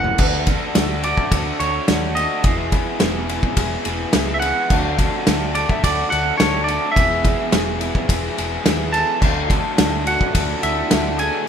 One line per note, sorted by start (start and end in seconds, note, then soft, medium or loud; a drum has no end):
0.00 0.11 F#1 medium
0.00 0.20 E3 medium
0.00 0.18 F#3 medium
0.00 0.19 A#3 medium
0.00 0.18 C#4 medium
0.00 0.20 C#4 medium
0.00 0.17 E4 medium
0.00 0.16 A#4 medium
0.00 1.04 F#5 loud
0.04 floor tom medium
0.18 0.55 D2 medium
0.18 0.46 D3 medium
0.18 0.47 A3 medium
0.18 0.48 D4 medium
0.18 0.48 F#4 loud
0.18 kick loud
0.18 crash loud
0.47 0.74 D3 medium
0.47 0.73 A3 medium
0.47 0.75 D4 medium
0.47 0.75 F#4 medium
0.47 kick medium
0.47 ride medium
0.75 1.12 D2 medium
0.75 1.01 D3 loud
0.75 1.02 A3 loud
0.75 1.02 D4 loud
0.75 1.03 F#4 loud
0.75 snare loud
0.75 ride loud
1.03 1.30 D3 medium
1.03 1.30 A3 medium
1.03 1.31 D4 medium
1.03 1.31 F#4 medium
1.03 1.57 D5 medium
1.03 ride medium
1.17 kick medium
1.31 1.50 D2 medium
1.31 1.59 D3 medium
1.31 1.59 A3 medium
1.31 1.60 D4 loud
1.31 1.61 F#4 loud
1.31 kick loud
1.31 ride medium
1.60 1.78 D2 medium
1.60 1.86 D3 medium
1.60 1.87 A3 medium
1.60 1.88 D4 loud
1.60 1.88 F#4 loud
1.60 2.18 C#5 medium
1.60 ride medium
1.87 2.25 D#2 medium
1.87 2.15 D3 medium
1.87 2.15 A3 loud
1.87 2.16 D4 loud
1.87 2.16 F#4 loud
1.87 snare loud
1.87 ride medium
2.15 2.43 D3 medium
2.15 2.43 A3 medium
2.15 2.43 D4 medium
2.15 2.43 F#4 medium
2.15 2.68 D#5 medium
2.15 ride medium
2.43 2.81 E1 medium
2.43 2.71 E2 medium
2.43 2.72 B2 loud
2.43 2.72 E3 loud
2.43 2.72 G#3 loud
2.43 2.73 B3 medium
2.43 2.72 E4 medium
2.43 2.73 G#4 loud
2.43 kick loud
2.43 ride medium
2.72 2.98 E2 medium
2.72 2.99 B2 medium
2.72 3.00 E3 medium
2.72 3.01 G#3 medium
2.72 3.01 B3 loud
2.72 3.00 E4 medium
2.72 3.02 G#4 medium
2.72 kick medium
2.72 ride medium
2.99 3.38 E1 medium
2.99 3.26 E2 loud
2.99 3.28 B2 medium
2.99 3.28 E3 loud
2.99 3.28 G#3 loud
2.99 3.29 B3 loud
2.99 3.28 E4 loud
2.99 3.29 G#4 loud
2.99 snare loud
2.99 ride medium
3.28 3.55 E2 medium
3.28 3.56 B2 medium
3.28 3.57 E3 medium
3.28 3.57 G#3 medium
3.28 3.58 B3 medium
3.28 3.56 E4 medium
3.28 3.58 G#4 medium
3.28 ride medium
3.43 kick medium
3.56 3.75 E1 medium
3.56 3.84 E2 loud
3.56 3.84 B2 medium
3.56 3.85 E3 loud
3.56 3.86 G#3 loud
3.56 3.86 B3 medium
3.56 3.83 E4 medium
3.56 3.87 G#4 medium
3.56 kick loud
3.56 ride loud
3.85 4.04 E1 medium
3.85 4.11 E2 medium
3.85 4.12 B2 medium
3.85 4.12 E3 medium
3.85 4.12 G#3 medium
3.85 4.13 B3 medium
3.85 4.12 E4 medium
3.85 4.14 G#4 medium
3.85 ride medium
4.12 4.51 C#2 medium
4.12 4.39 E2 medium
4.12 4.40 B2 loud
4.12 4.41 E3 medium
4.12 4.41 G#3 loud
4.12 4.41 B3 loud
4.12 4.41 E4 loud
4.12 4.42 G#4 loud
4.12 snare loud
4.12 ride medium
4.34 4.39 E5 medium
4.40 4.68 E2 medium
4.40 4.68 B2 medium
4.40 4.69 E3 medium
4.40 4.69 G#3 medium
4.40 4.69 B3 medium
4.40 4.69 E4 medium
4.40 4.69 G#4 medium
4.40 5.22 F#5 loud
4.40 ride medium
4.69 5.07 D2 medium
4.69 4.96 D3 medium
4.69 4.97 F#3 loud
4.69 4.97 A3 loud
4.69 4.97 D4 medium
4.69 4.98 F#4 loud
4.69 4.98 A4 loud
4.69 kick loud
4.69 crash medium
4.97 5.24 D3 medium
4.97 5.25 F#3 medium
4.97 5.24 A3 medium
4.97 5.25 D4 medium
4.97 5.25 F#4 loud
4.97 5.26 A4 medium
4.97 kick medium
4.97 ride medium
5.25 5.64 D2 medium
5.25 5.52 D3 medium
5.25 5.54 F#3 loud
5.25 5.53 A3 loud
5.25 5.54 D4 loud
5.25 5.54 F#4 loud
5.25 5.55 A4 loud
5.25 snare loud
5.25 ride loud
5.54 5.82 D3 medium
5.54 5.82 F#3 medium
5.54 5.82 A3 medium
5.54 5.83 D4 medium
5.54 5.84 F#4 loud
5.54 5.83 A4 loud
5.54 5.69 D5 medium
5.54 ride medium
5.69 5.84 E5 medium
5.69 kick medium
5.83 6.02 D2 loud
5.83 6.08 D3 medium
5.83 6.10 F#3 medium
5.83 6.09 A3 medium
5.83 6.09 D4 loud
5.83 6.10 F#4 loud
5.83 6.11 A4 loud
5.83 6.10 D5 medium
5.83 kick loud
5.83 ride loud
6.09 6.30 D2 medium
6.09 6.36 D3 medium
6.09 6.38 F#3 medium
6.09 6.37 A3 medium
6.09 6.37 D4 medium
6.09 6.38 F#4 medium
6.09 6.39 A4 medium
6.09 6.37 F#5 loud
6.09 ride medium
6.37 6.77 D2 medium
6.37 6.65 D3 medium
6.37 6.67 F#3 medium
6.37 6.66 A3 medium
6.37 6.67 D4 loud
6.37 6.67 F#4 loud
6.37 6.68 A4 loud
6.37 6.64 C#5 medium
6.37 snare loud
6.37 ride medium
6.64 6.94 D3 medium
6.64 6.95 F#3 medium
6.64 6.94 A3 medium
6.64 6.95 F#4 medium
6.64 6.91 D5 medium
6.68 6.95 D4 medium
6.68 6.95 A4 loud
6.68 ride medium
6.92 7.22 E2 medium
6.92 7.23 B2 medium
6.92 7.23 E3 loud
6.92 8.60 E5 medium
6.96 7.33 E1 loud
6.96 7.23 G#3 loud
6.96 7.24 B3 loud
6.96 7.24 E4 medium
6.96 7.25 G#4 loud
6.96 kick loud
6.96 ride medium
7.23 7.50 E2 medium
7.23 7.51 B2 medium
7.23 7.51 E3 medium
7.23 7.52 G#3 medium
7.23 7.52 B3 medium
7.23 7.51 E4 medium
7.23 7.53 G#4 medium
7.23 kick medium
7.23 ride medium
7.51 7.90 E1 medium
7.51 7.78 E2 medium
7.51 7.78 B2 loud
7.51 7.79 E3 loud
7.51 7.80 G#3 loud
7.51 7.80 B3 loud
7.51 7.79 E4 loud
7.51 7.80 G#4 loud
7.51 snare loud
7.51 ride medium
7.79 8.06 E2 medium
7.79 8.07 B2 medium
7.79 8.07 E3 medium
7.79 8.08 G#3 medium
7.79 8.09 B3 medium
7.79 8.08 E4 medium
7.79 8.09 G#4 medium
7.79 ride medium
7.95 kick medium
8.07 8.28 E1 medium
8.07 8.35 E2 medium
8.07 8.36 B2 medium
8.07 8.36 E3 loud
8.07 8.37 G#3 medium
8.07 8.37 B3 loud
8.07 8.36 E4 loud
8.07 8.38 G#4 loud
8.07 kick loud
8.07 ride medium
8.36 8.56 E1 medium
8.36 8.63 E2 medium
8.36 8.64 B2 medium
8.36 8.64 E3 medium
8.36 8.65 G#3 medium
8.36 8.66 B3 medium
8.36 8.63 E4 medium
8.36 8.66 G#4 medium
8.36 ride medium
8.64 9.02 D#2 medium
8.64 8.90 E2 medium
8.64 8.91 B2 medium
8.64 8.92 E3 loud
8.64 8.92 G#3 medium
8.64 8.93 B3 medium
8.64 8.92 E4 medium
8.64 8.93 G#4 loud
8.64 snare loud
8.64 ride medium
8.91 9.19 E2 medium
8.91 9.20 B2 medium
8.91 9.20 E3 medium
8.91 9.20 G#3 medium
8.91 9.21 B3 medium
8.91 9.21 E4 medium
8.91 9.21 G#4 medium
8.91 10.07 A5 loud
8.91 ride medium
8.97 10.04 A4 medium
9.20 9.58 D2 medium
9.20 9.47 D3 medium
9.20 9.48 F#3 medium
9.20 9.48 A3 loud
9.20 9.49 D4 loud
9.20 9.49 F#4 loud
9.20 9.49 A4 loud
9.20 kick loud
9.20 crash medium
9.49 9.76 D3 medium
9.49 9.76 F#3 medium
9.49 9.77 A3 medium
9.49 9.77 D4 medium
9.49 9.78 F#4 medium
9.49 9.77 A4 medium
9.49 kick medium
9.49 ride medium
9.77 10.15 D2 medium
9.77 10.03 D3 medium
9.77 10.05 F#3 medium
9.77 10.04 A3 medium
9.77 10.05 D4 loud
9.77 10.06 F#4 loud
9.77 10.06 A4 loud
9.77 snare loud
9.77 ride medium
10.05 10.32 D3 medium
10.05 10.32 F#3 medium
10.05 10.32 A3 medium
10.05 10.33 D4 medium
10.05 10.34 F#4 medium
10.05 10.60 F#4 medium
10.05 10.34 A4 medium
10.05 10.63 F#5 loud
10.05 ride medium
10.21 kick medium
10.33 10.53 D2 medium
10.33 10.60 D3 medium
10.33 10.62 F#3 medium
10.33 10.60 A3 loud
10.33 10.61 D4 loud
10.33 10.62 F#4 loud
10.33 10.63 A4 loud
10.33 kick loud
10.33 ride loud
10.61 10.82 D2 medium
10.61 10.87 D3 medium
10.61 10.90 F#3 medium
10.61 10.88 A3 medium
10.61 10.89 D4 medium
10.61 11.17 E4 medium
10.61 10.89 F#4 loud
10.61 10.92 A4 medium
10.61 11.16 E5 medium
10.61 ride medium
10.88 11.29 D2 medium
10.88 11.18 D3 medium
10.88 11.18 F#3 loud
10.88 11.18 A3 loud
10.88 11.19 D4 loud
10.88 11.19 F#4 loud
10.88 snare loud
10.88 ride medium
10.93 11.20 A4 loud
11.19 11.46 D3 medium
11.19 11.46 F#3 medium
11.19 11.46 A3 medium
11.19 11.47 D4 medium
11.19 11.47 F#4 medium
11.19 11.48 G#4 medium
11.19 11.47 A4 loud
11.19 11.48 G#5 loud
11.19 ride medium